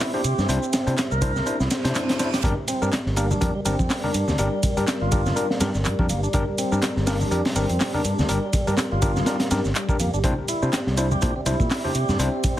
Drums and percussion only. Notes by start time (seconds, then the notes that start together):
0.00 snare, clap, open hi-hat, shaker
0.24 closed hi-hat, ride, shaker
0.38 snare, shaker
0.49 closed hi-hat, shaker
0.63 shaker
0.73 snare, closed hi-hat, ride, shaker
0.87 closed hi-hat, shaker
0.98 snare, clap, closed hi-hat, shaker
1.11 shaker
1.22 kick, closed hi-hat, ride, shaker
1.36 snare, shaker
1.46 closed hi-hat, shaker
1.60 snare, shaker
1.71 snare, closed hi-hat, ride, shaker
1.85 snare, closed hi-hat, shaker
1.95 snare, clap, closed hi-hat, shaker
2.09 snare, closed hi-hat
2.19 snare, closed hi-hat, ride, shaker
2.33 snare, closed hi-hat, shaker
2.43 kick, closed hi-hat, shaker
2.68 closed hi-hat, ride, shaker
2.82 shaker
2.93 snare, clap, closed hi-hat, shaker
3.06 snare
3.16 closed hi-hat, ride, shaker
3.31 high conga, low conga, shaker
3.41 kick, closed hi-hat, shaker
3.65 closed hi-hat, ride, high conga, shaker
3.79 kick, shaker
3.90 snare, clap, open hi-hat, shaker
4.04 low conga
4.14 closed hi-hat, ride, shaker
4.28 snare, low conga, shaker
4.38 closed hi-hat, shaker
4.63 kick, closed hi-hat, ride, shaker
4.77 closed hi-hat, shaker
4.88 snare, clap, closed hi-hat, shaker
5.12 kick, closed hi-hat, ride, shaker
5.26 snare, high conga, low conga, shaker
5.36 closed hi-hat, shaker
5.50 snare
5.60 snare, closed hi-hat, ride, high conga, shaker
5.75 snare, shaker
5.85 clap, closed hi-hat, shaker
5.99 kick
6.09 closed hi-hat, ride, shaker
6.23 shaker
6.33 kick, closed hi-hat, shaker
6.58 closed hi-hat, ride, shaker
6.72 shaker
6.82 snare, clap, closed hi-hat, shaker
6.97 snare
7.07 snare, open hi-hat, ride, shaker
7.20 high conga, low conga, shaker
7.31 closed hi-hat, shaker
7.45 snare, open hi-hat
7.55 ride, high conga, shaker
7.69 closed hi-hat, shaker
7.80 snare, clap, open hi-hat, shaker
7.94 low conga
8.04 closed hi-hat, ride, shaker
8.19 snare, low conga, shaker
8.29 closed hi-hat, shaker
8.53 kick, closed hi-hat, ride, shaker
8.67 closed hi-hat, shaker
8.78 snare, clap, closed hi-hat, shaker
9.02 kick, closed hi-hat, ride, shaker
9.16 snare, high conga, low conga, shaker
9.26 snare, closed hi-hat, shaker
9.40 snare, closed hi-hat
9.51 snare, closed hi-hat, ride, high conga, shaker
9.65 snare, shaker
9.75 clap, closed hi-hat, shaker
9.89 kick, shaker
10.00 closed hi-hat, ride, shaker
10.14 shaker
10.24 kick, closed hi-hat, shaker
10.48 closed hi-hat, ride, shaker
10.62 shaker
10.73 snare, clap, closed hi-hat, shaker
10.87 snare
10.97 closed hi-hat, ride, shaker
11.11 high conga, low conga, shaker
11.22 kick, closed hi-hat, shaker
11.46 closed hi-hat, ride, high conga, shaker
11.60 kick, shaker
11.71 snare, clap, open hi-hat, shaker
11.85 low conga
11.95 closed hi-hat, ride, shaker
12.09 snare, low conga, shaker
12.19 closed hi-hat, shaker
12.44 kick, closed hi-hat, ride, shaker